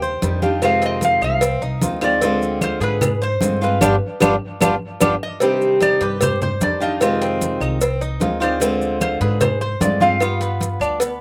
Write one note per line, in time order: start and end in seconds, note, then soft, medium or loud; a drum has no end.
0.00 0.18 D#2 loud
0.00 0.41 C5 medium
0.00 0.66 G5 loud
0.00 high conga soft
0.00 maracas soft
0.22 1.16 F2 medium
0.22 0.41 D#3 soft
0.22 0.41 G3 medium
0.22 0.42 D4 medium
0.22 0.41 G4 medium
0.22 cowbell medium
0.22 high conga medium
0.22 maracas medium
0.42 0.62 D#3 medium
0.42 0.62 G3 medium
0.42 0.62 D4 medium
0.42 0.81 F4 medium
0.42 0.61 G4 medium
0.42 high conga medium
0.42 maracas soft
0.62 1.41 C3 medium
0.62 1.41 D#3 medium
0.62 1.42 G#3 loud
0.62 1.42 C4 medium
0.62 1.42 F4 loud
0.62 0.82 F5 loud
0.62 cowbell medium
0.62 high conga soft
0.62 claves medium
0.62 maracas medium
0.82 1.21 C4 medium
0.82 1.04 D#5 loud
0.82 cowbell medium
0.82 high conga soft
0.82 maracas soft
1.01 1.23 F5 loud
1.01 cowbell medium
1.01 high conga medium
1.01 maracas medium
1.21 1.59 C2 medium
1.21 1.41 D#4 medium
1.21 1.83 F5 medium
1.21 claves medium
1.21 maracas soft
1.41 1.61 C4 medium
1.41 muted nylon-string guitar stroke medium
1.41 cowbell loud
1.41 high conga soft
1.41 maracas medium
1.61 1.80 C2 medium
1.61 2.01 D#4 medium
1.61 high conga soft
1.61 maracas soft
1.81 2.76 D2 medium
1.81 2.01 D#3 medium
1.81 2.01 G#3 soft
1.81 2.01 C4 medium
1.81 2.00 F4 medium
1.81 2.05 D#5 medium
1.81 cowbell medium
1.81 high conga medium
1.81 maracas medium
2.01 2.21 D#3 medium
2.01 2.21 G#3 medium
2.01 2.21 C4 medium
2.01 2.21 F4 medium
2.01 2.21 C5 medium
2.01 2.40 D5 loud
2.01 cowbell medium
2.01 high conga soft
2.01 claves medium
2.01 maracas soft
2.21 3.00 D3 medium
2.21 3.01 G#3 loud
2.21 2.60 C4 medium
2.21 3.01 C4 medium
2.21 3.02 F4 medium
2.21 cowbell loud
2.21 high conga soft
2.21 maracas medium
2.41 high conga soft
2.41 maracas soft
2.61 2.81 F4 medium
2.61 2.83 C5 loud
2.61 cowbell medium
2.61 high conga medium
2.61 claves medium
2.61 maracas medium
2.80 3.37 G#2 loud
2.80 3.20 G#4 medium
2.80 3.23 B4 medium
2.80 cowbell medium
2.80 high conga soft
2.80 maracas soft
3.01 muted nylon-string guitar stroke medium
3.01 cowbell loud
3.01 high conga soft
3.01 low conga medium
3.01 claves medium
3.01 maracas medium
3.21 3.60 C5 medium
3.21 high conga soft
3.21 maracas soft
3.41 3.78 G2 medium
3.41 3.61 D3 medium
3.41 3.61 G#3 medium
3.41 3.61 C4 medium
3.41 3.60 F4 medium
3.41 cowbell medium
3.41 high conga medium
3.41 maracas medium
3.61 3.81 G#3 medium
3.61 3.81 C4 medium
3.61 3.81 F4 medium
3.61 4.39 B4 medium
3.61 maracas soft
3.81 3.96 G1 loud
3.81 3.94 G3 loud
3.81 3.94 B3 loud
3.81 3.94 D4 loud
3.81 3.95 D4 loud
3.81 3.95 F4 loud
3.81 3.95 G4 loud
3.81 cowbell medium
3.81 high conga loud
3.81 claves medium
3.81 maracas loud
4.20 4.36 G1 loud
4.20 4.34 G3 loud
4.20 4.34 B3 loud
4.20 4.34 D4 loud
4.20 4.35 D4 loud
4.20 4.35 F4 medium
4.20 4.35 G4 medium
4.20 cowbell medium
4.20 high conga loud
4.20 claves loud
4.20 maracas loud
4.61 4.76 G1 medium
4.61 4.74 G3 loud
4.61 4.74 B3 medium
4.61 4.74 D4 medium
4.61 4.75 D4 medium
4.61 4.75 F4 loud
4.61 4.75 G4 medium
4.61 cowbell loud
4.61 high conga loud
4.61 claves loud
4.61 maracas loud
5.00 5.16 G1 medium
5.00 5.14 G3 loud
5.00 5.14 B3 loud
5.00 5.14 D4 medium
5.00 5.14 D4 loud
5.00 5.14 F4 medium
5.00 5.14 G4 medium
5.00 cowbell loud
5.00 high conga loud
5.00 claves loud
5.00 maracas loud
5.23 5.59 D#5 loud
5.40 6.19 C3 medium
5.40 6.20 D#3 medium
5.40 6.20 G3 medium
5.40 5.80 C4 medium
5.40 6.20 D4 medium
5.40 6.20 G4 medium
5.40 cowbell loud
5.40 high conga soft
5.40 maracas medium
5.61 high conga soft
5.61 maracas soft
5.81 6.01 D#4 medium
5.81 6.03 D5 loud
5.81 cowbell medium
5.81 high conga medium
5.81 claves medium
5.81 maracas medium
6.01 6.57 G2 medium
6.01 6.40 G4 medium
6.01 6.23 B4 medium
6.01 cowbell medium
6.01 high conga soft
6.01 maracas soft
6.21 6.42 C5 loud
6.21 muted nylon-string guitar stroke medium
6.21 cowbell loud
6.21 high conga soft
6.21 low conga medium
6.21 claves medium
6.21 maracas medium
6.42 6.80 C5 medium
6.42 6.63 C5 medium
6.42 high conga soft
6.42 low conga medium
6.42 maracas soft
6.61 7.55 F2 medium
6.61 6.80 D#3 soft
6.61 6.81 G3 medium
6.61 6.80 D4 medium
6.61 6.79 G4 medium
6.61 6.82 D5 loud
6.61 cowbell medium
6.61 high conga medium
6.61 maracas medium
6.80 7.00 D#3 medium
6.80 7.01 G3 medium
6.80 7.01 D4 medium
6.80 7.20 F4 medium
6.80 7.00 G4 medium
6.80 7.19 D#5 medium
6.80 maracas soft
7.00 7.80 C3 medium
7.00 7.80 D#3 medium
7.00 7.81 G#3 medium
7.00 7.82 C4 medium
7.00 7.81 F4 medium
7.00 cowbell loud
7.00 high conga soft
7.00 claves medium
7.00 maracas medium
7.22 7.60 C4 medium
7.22 cowbell medium
7.22 high conga soft
7.22 maracas soft
7.41 cowbell medium
7.41 high conga medium
7.41 maracas medium
7.60 8.17 C2 loud
7.60 7.81 D#4 medium
7.60 claves medium
7.60 maracas soft
7.81 8.01 C4 medium
7.81 muted nylon-string guitar stroke medium
7.81 cowbell loud
7.81 high conga soft
7.81 maracas medium
8.01 8.40 D#4 medium
8.01 high conga soft
8.01 maracas soft
8.20 9.15 D2 medium
8.20 8.40 D#3 medium
8.20 8.40 G#3 medium
8.20 8.39 C4 medium
8.20 8.39 F4 medium
8.20 cowbell medium
8.20 high conga medium
8.20 maracas medium
8.40 8.60 D#3 medium
8.40 8.60 G#3 medium
8.40 8.60 C4 medium
8.40 8.60 F4 medium
8.40 8.61 C5 medium
8.40 8.80 D5 loud
8.40 cowbell medium
8.40 high conga soft
8.40 claves medium
8.40 maracas soft
8.60 9.39 D3 medium
8.60 9.40 G#3 medium
8.60 9.00 C4 medium
8.60 9.40 C4 loud
8.60 9.41 F4 loud
8.60 cowbell loud
8.60 high conga soft
8.60 maracas medium
8.81 high conga soft
8.81 maracas soft
9.01 9.21 F4 medium
9.01 9.21 C5 loud
9.01 cowbell medium
9.01 high conga medium
9.01 claves medium
9.01 maracas medium
9.20 9.77 G#2 medium
9.20 9.60 G#4 medium
9.20 9.40 B4 medium
9.20 cowbell medium
9.20 high conga soft
9.20 maracas soft
9.41 9.60 C5 loud
9.41 muted nylon-string guitar stroke medium
9.41 cowbell loud
9.41 high conga soft
9.41 low conga medium
9.41 claves medium
9.41 maracas medium
9.61 9.80 C5 medium
9.61 10.00 C5 medium
9.61 high conga soft
9.61 maracas soft
9.80 10.75 G2 medium
9.80 10.00 D3 soft
9.80 10.00 G#3 medium
9.80 10.00 C4 medium
9.80 10.00 F4 medium
9.80 10.02 D5 loud
9.80 cowbell medium
9.80 high conga loud
9.80 maracas medium
10.00 10.20 G#3 medium
10.00 10.21 C4 medium
10.00 10.20 F4 medium
10.00 10.40 F4 medium
10.00 10.39 F5 loud
10.00 high conga medium
10.00 maracas soft
10.20 11.00 G3 medium
10.20 10.99 B3 medium
10.20 11.00 F4 medium
10.20 cowbell medium
10.20 high conga soft
10.20 claves medium
10.20 maracas medium
10.40 10.80 B3 medium
10.40 cowbell medium
10.40 high conga soft
10.40 maracas soft
10.61 cowbell medium
10.61 high conga medium
10.61 maracas medium
10.80 11.21 D2 medium
10.80 11.00 D4 medium
10.80 claves medium
10.80 maracas soft
11.00 11.20 B3 medium
11.00 muted nylon-string guitar stroke medium
11.00 cowbell loud
11.00 high conga soft
11.00 maracas medium